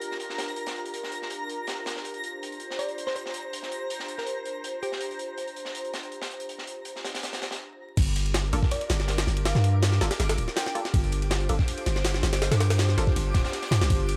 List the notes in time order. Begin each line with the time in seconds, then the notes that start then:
Already playing: D4 F4 G4 A#4 A#5
0.01 closed hi-hat
0.11 snare
0.20 closed hi-hat
0.29 snare
0.38 snare, closed hi-hat
0.48 closed hi-hat
0.56 closed hi-hat
0.66 snare, closed hi-hat
0.76 closed hi-hat
0.85 closed hi-hat
0.94 closed hi-hat
1.03 snare
1.12 closed hi-hat
1.22 snare
1.30 closed hi-hat
1.49 closed hi-hat
1.67 snare, closed hi-hat
1.86 snare, closed hi-hat
1.96 snare
2.05 C5, closed hi-hat
2.14 closed hi-hat
2.24 closed hi-hat
2.43 closed hi-hat
2.52 closed hi-hat
2.60 closed hi-hat
2.70 snare
2.79 D5, closed hi-hat
2.88 closed hi-hat
2.98 closed hi-hat
3.07 C5, snare
3.16 C5, closed hi-hat
3.26 snare
3.34 closed hi-hat
3.53 closed hi-hat
3.63 snare
3.72 closed hi-hat
3.90 closed hi-hat
3.99 snare
4.08 closed hi-hat
4.18 A#4, snare
4.26 closed hi-hat
4.45 closed hi-hat
4.64 closed hi-hat
4.83 G4, closed hi-hat
4.92 snare
5.00 closed hi-hat
5.11 closed hi-hat
5.19 closed hi-hat
5.38 closed hi-hat
5.47 closed hi-hat
5.56 closed hi-hat
5.65 snare
5.75 closed hi-hat
5.84 closed hi-hat
5.93 snare, closed hi-hat
6.03 closed hi-hat
6.12 closed hi-hat
6.22 snare, closed hi-hat
6.31 closed hi-hat
6.40 closed hi-hat
6.49 closed hi-hat
6.58 snare
6.67 closed hi-hat
6.85 closed hi-hat
6.96 snare
7.05 snare, closed hi-hat
7.15 snare, closed hi-hat
7.23 snare, closed hi-hat
7.33 snare, closed hi-hat
7.41 snare, closed hi-hat
7.51 snare, closed hi-hat
7.97 G1 D4 F4 G4 A#4 D6, kick, closed hi-hat, crash, ride
8.07 closed hi-hat
8.16 closed hi-hat, ride
8.26 ride
8.34 snare, closed hi-hat, ride
8.45 closed hi-hat
8.53 G1 A#3 D4 F4 A4, closed hi-hat, ride
8.63 kick, snare
8.71 D5, closed hi-hat, ride
8.81 closed hi-hat, ride
8.89 G1, snare, closed hi-hat, ride
9.00 snare
9.08 snare, closed hi-hat, ride
9.18 snare, ride
9.27 G1, snare, closed hi-hat
9.37 ride
9.45 F5, snare, closed hi-hat, ride
9.55 G2, snare
9.64 closed hi-hat, ride
9.82 snare, closed hi-hat, ride
9.92 snare
10.01 G1 A#3 D4 F4 A4, snare, closed hi-hat, ride
10.11 snare, ride
10.20 G1, snare, closed hi-hat, ride
10.29 snare, ride
10.37 D1, closed hi-hat, ride
10.48 snare
10.56 G5, snare, closed hi-hat, ride
10.66 G5, snare
10.75 A#3 D4 F4 A4, closed hi-hat, ride
10.85 snare
10.93 G1 C5, kick, closed hi-hat, ride
11.04 closed hi-hat
11.12 closed hi-hat, ride
11.22 ride
11.31 snare, closed hi-hat, ride
11.40 closed hi-hat
11.49 G1 A#3 D4 F4 A4, closed hi-hat, ride
11.59 kick, snare
11.68 closed hi-hat, ride
11.78 closed hi-hat, ride
11.86 G1, snare, closed hi-hat, ride
11.95 snare
12.04 snare, closed hi-hat, ride
12.14 snare
12.23 G1, snare, closed hi-hat, ride
12.33 snare, ride
12.42 snare, closed hi-hat, ride
12.51 G2, snare, ride
12.60 snare, closed hi-hat, ride
12.70 snare, ride
12.78 snare, closed hi-hat, ride
12.88 snare
12.97 G1 A#3 D4 F4 A4, snare, closed hi-hat, ride
13.07 kick, snare
13.16 G1, closed hi-hat, ride
13.34 D1, kick, snare, closed hi-hat, ride
13.44 snare, closed hi-hat
13.52 snare, closed hi-hat, ride
13.62 snare, closed hi-hat, ride
13.71 G2, snare, closed hi-hat, ride
13.81 C2, snare, closed hi-hat, ride
13.90 G1 A#4, kick, closed hi-hat, ride
14.00 closed hi-hat
14.09 closed hi-hat, ride